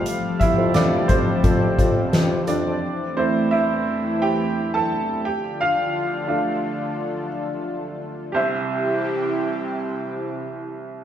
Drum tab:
HH |xxxxxxxx|--------|--------|--------|
SD |--o---o-|--------|--------|--------|
BD |-o-ooo--|--------|--------|--------|